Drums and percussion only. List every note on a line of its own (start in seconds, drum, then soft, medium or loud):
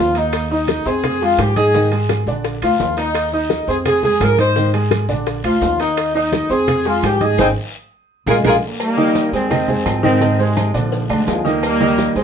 0.15 high bongo soft
0.15 high conga soft
0.15 high timbale medium
0.15 short guiro medium
0.15 maracas soft
0.33 high bongo medium
0.33 high conga soft
0.33 high timbale loud
0.33 long guiro medium
0.33 claves medium
0.33 maracas medium
0.50 high conga soft
0.50 maracas soft
0.68 high bongo medium
0.68 high conga loud
0.68 high timbale medium
0.68 low timbale medium
0.68 short guiro medium
0.68 maracas medium
0.86 high bongo soft
0.86 high conga soft
0.86 short guiro medium
0.86 maracas soft
1.03 high bongo medium
1.03 high conga soft
1.03 low conga medium
1.03 high timbale loud
1.03 long guiro medium
1.03 claves medium
1.03 maracas medium
1.21 high bongo soft
1.21 high conga soft
1.21 maracas soft
1.39 high bongo soft
1.39 low bongo medium
1.39 high conga medium
1.39 high timbale loud
1.39 low timbale medium
1.39 short guiro medium
1.39 claves medium
1.39 maracas medium
1.56 high bongo soft
1.56 high conga medium
1.56 high timbale medium
1.56 short guiro medium
1.56 maracas soft
1.74 high bongo medium
1.74 high conga soft
1.74 long guiro medium
1.74 maracas medium
1.92 high conga soft
1.92 high timbale medium
1.92 maracas soft
2.09 high bongo medium
2.09 high conga loud
2.09 high timbale medium
2.09 low timbale medium
2.09 short guiro medium
2.09 claves medium
2.09 maracas medium
2.27 high bongo soft
2.27 high conga soft
2.27 short guiro medium
2.27 maracas soft
2.44 high bongo medium
2.44 high conga soft
2.44 high timbale medium
2.44 long guiro medium
2.44 maracas medium
2.62 high bongo soft
2.62 high conga soft
2.62 high timbale loud
2.62 claves medium
2.62 maracas soft
2.80 high bongo soft
2.80 low bongo medium
2.80 high conga medium
2.80 low timbale medium
2.80 short guiro medium
2.80 maracas medium
2.97 high bongo soft
2.97 high conga soft
2.97 high timbale medium
2.97 short guiro medium
2.97 maracas soft
3.15 high bongo medium
3.15 high conga soft
3.15 high timbale loud
3.15 long guiro medium
3.15 claves medium
3.15 maracas medium
3.32 high conga soft
3.32 maracas soft
3.50 high bongo medium
3.50 high conga loud
3.50 high timbale medium
3.50 low timbale medium
3.50 short guiro medium
3.50 maracas medium
3.68 high bongo soft
3.68 high conga soft
3.68 short guiro medium
3.68 maracas soft
3.85 high bongo medium
3.85 high conga soft
3.85 low conga medium
3.85 high timbale loud
3.85 long guiro medium
3.85 claves medium
3.85 maracas medium
4.03 high bongo soft
4.03 high conga soft
4.03 low conga medium
4.03 maracas soft
4.20 high bongo soft
4.20 low bongo medium
4.20 high conga loud
4.20 high timbale loud
4.20 low timbale medium
4.20 short guiro medium
4.20 claves medium
4.20 maracas medium
4.38 high bongo soft
4.38 high conga medium
4.38 high timbale medium
4.38 short guiro medium
4.38 maracas soft
4.56 high bongo medium
4.56 long guiro medium
4.56 maracas medium
4.74 high timbale medium
4.74 maracas soft
4.91 high bongo medium
4.91 high conga loud
4.91 high timbale loud
4.91 low timbale medium
4.91 short guiro medium
4.91 claves medium
4.91 maracas medium
5.09 high bongo soft
5.09 high conga soft
5.09 short guiro medium
5.09 maracas soft
5.26 high bongo medium
5.26 high conga soft
5.26 high timbale medium
5.26 long guiro medium
5.26 maracas medium
5.44 high bongo soft
5.44 high conga soft
5.44 high timbale medium
5.44 claves medium
5.44 maracas soft
5.62 high bongo soft
5.62 low bongo medium
5.62 high conga medium
5.62 low timbale medium
5.62 short guiro medium
5.62 maracas medium
5.79 high bongo soft
5.79 high conga soft
5.79 high timbale medium
5.79 short guiro medium
5.79 maracas soft
5.97 high bongo medium
5.97 high conga soft
5.97 high timbale loud
5.97 long guiro medium
5.97 claves medium
5.97 maracas medium
6.15 high conga soft
6.15 maracas soft
6.32 high bongo medium
6.32 high conga loud
6.32 high timbale medium
6.32 low timbale medium
6.32 short guiro medium
6.32 maracas medium
6.50 high bongo soft
6.50 high conga soft
6.50 short guiro medium
6.50 maracas soft
6.68 high bongo medium
6.68 high conga soft
6.68 low conga medium
6.68 high timbale loud
6.68 long guiro medium
6.68 claves medium
6.68 maracas medium
6.86 high bongo soft
6.86 high conga soft
6.86 maracas soft
7.03 high bongo soft
7.03 low bongo medium
7.03 high conga medium
7.03 high timbale loud
7.03 low timbale medium
7.03 short guiro medium
7.03 claves medium
7.03 maracas medium
7.21 high bongo soft
7.21 high conga medium
7.21 high timbale medium
7.21 short guiro medium
7.21 maracas soft
7.38 low bongo medium
7.38 high conga medium
7.38 high timbale loud
7.38 long guiro loud
7.38 claves medium
7.38 maracas loud
8.27 low bongo loud
8.27 high conga loud
8.27 high timbale loud
8.27 long guiro loud
8.27 claves loud
8.27 maracas loud
8.45 low bongo loud
8.45 high conga loud
8.45 high timbale loud
8.45 long guiro loud
8.45 claves loud
8.45 maracas medium
8.80 cowbell loud
8.80 high conga soft
8.80 low agogo loud
8.80 long guiro medium
8.80 claves medium
8.80 maracas medium
8.98 high conga soft
8.98 maracas soft
9.15 cowbell medium
9.15 high conga loud
9.15 low timbale medium
9.15 low agogo medium
9.15 short guiro medium
9.15 maracas medium
9.33 high conga soft
9.33 low agogo medium
9.33 short guiro medium
9.33 maracas soft
9.50 cowbell loud
9.50 high conga soft
9.50 low conga medium
9.50 low agogo loud
9.50 long guiro medium
9.50 claves medium
9.50 maracas medium
9.68 high conga soft
9.68 low conga medium
9.68 maracas soft
9.86 cowbell medium
9.86 high conga medium
9.86 low timbale medium
9.86 low agogo loud
9.86 short guiro medium
9.86 claves medium
9.86 maracas medium
10.04 cowbell medium
10.04 high conga medium
10.04 short guiro medium
10.04 maracas soft
10.21 cowbell loud
10.21 high conga soft
10.21 low agogo loud
10.21 long guiro medium
10.21 maracas medium
10.39 high conga soft
10.39 maracas soft
10.57 cowbell medium
10.57 high conga loud
10.57 low timbale medium
10.57 low agogo loud
10.57 short guiro medium
10.57 claves medium
10.57 maracas medium
10.74 high conga soft
10.74 low agogo medium
10.74 short guiro medium
10.74 maracas soft
10.92 cowbell loud
10.92 high conga soft
10.92 long guiro medium
10.92 maracas medium
11.10 high conga soft
11.10 low agogo loud
11.10 claves medium
11.10 maracas soft
11.27 cowbell medium
11.27 high conga loud
11.27 low timbale medium
11.27 low agogo medium
11.27 short guiro medium
11.27 maracas medium
11.45 high conga soft
11.45 short guiro medium
11.45 maracas soft
11.63 cowbell loud
11.63 high conga soft
11.63 low agogo loud
11.63 long guiro medium
11.63 claves medium
11.63 maracas medium
11.81 maracas soft
11.98 cowbell medium
11.98 high conga loud
11.98 low timbale medium
11.98 low agogo medium
11.98 short guiro medium
11.98 maracas medium
12.16 high conga soft
12.16 low agogo medium
12.16 short guiro medium
12.16 maracas soft